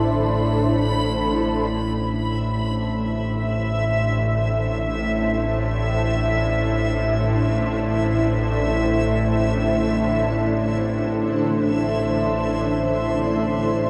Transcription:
Already playing: synth drone A1 A2, ambient pad D4 E4 A4 C5, synth texture B5
1.72 synth drone A1 A2, synth texture E5

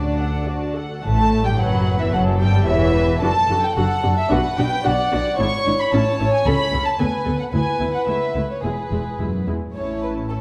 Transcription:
Already playing: double bass section D2, cello section D4, viola section F#4, violin section D5 A5
0.19 viola section A4, violin section F#5
0.47 viola section F#4, violin section D5 A5
0.76 viola section A4, violin section F#5
1.04 double bass section A1, cello section A2, viola section A3, violin section A5
1.46 cello section G2, viola section G3, violin section G5
1.58 double bass section F#1, cello section F#2, viola section F#3, violin section B4 F#5
2.00 cello section E2, viola section E3, violin section E5
2.12 double bass section F#1, cello section F#2, viola section F#3, violin section A4 F#5
2.40 double bass section G1, cello section G2, viola section G3, violin section G5
2.67 double bass section E1, cello section E2, viola section E3, violin section C#5 E5
2.95 violin section B4
3.21 double bass section F#1, cello section F#2, viola section D4 F#4, violin section A4 A5
3.50 double bass section F#1, cello section F#2, viola section D4 F#4
3.63 violin section G5
3.76 double bass section F#1, cello section F#2, viola section D4 F#4, violin section F#5
4.03 double bass section F#1, cello section F#2, viola section D4 F#4
4.17 violin section E5
4.30 double bass section B1, cello section B2, viola section D4 F#4, violin section B4 F#5
4.57 double bass section B1, cello section B2, viola section D4 F#4, violin section G5
4.84 double bass section B1, cello section B2, viola section D4 F#4, violin section D5 F#5
5.12 double bass section B1, cello section B2, viola section D4 F#4
5.39 double bass section G#1, cello section G#2, viola section D4 E4, violin section C#5 C#6
5.66 double bass section G#1, cello section G#2, viola section D4 E4
5.80 violin section B5
5.92 double bass section A1, cello section A2, viola section C#4 E4, violin section A5
6.20 double bass section A1, cello section A2, viola section C#4 E4
6.32 violin section G#5
6.46 cello section C#2, double bass section C#2, viola section C#4 A4, violin section B5
6.72 double bass section C#2, cello section C#2, viola section C#4 A4
6.86 violin section A5
6.99 cello section D2, double bass section D2, viola section B3 A4, violin section B4 G#5
7.26 double bass section D2, cello section D2, viola section B3 A4
7.39 violin section F#5
7.52 double bass section D2, cello section D2, viola section B3 E4, violin section B4 G#5
7.79 cello section D2, double bass section D2, viola section B3 E4
7.94 violin section F#5
8.07 double bass section C#2, cello section C#2, viola section A3 E4, violin section E5
8.35 double bass section C#2, cello section C#2, viola section A3 E4
8.51 violin section C#5
8.63 double bass section E1, cello section E2, viola section G#3 E4, violin section G#4 B4
8.92 double bass section E1, cello section E2, viola section G#3 E4
9.19 double bass section E1, cello section F#2, viola section G#3 E4
9.47 double bass section E1, cello section E2, viola section G#3 E4
9.75 double bass section A1, cello section A2, viola section C#4 E4, violin section C#5 A5
10.03 violin section B4
10.30 viola section C#4 E4, violin section A4 A5

